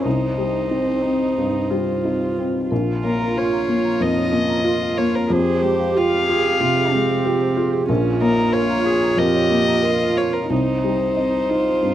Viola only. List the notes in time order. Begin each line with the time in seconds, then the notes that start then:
0.05 D#4
0.71 C4
1.02 D#4
1.71 F4
2.69 F4
5.31 G4
7.91 F4
10.50 D#4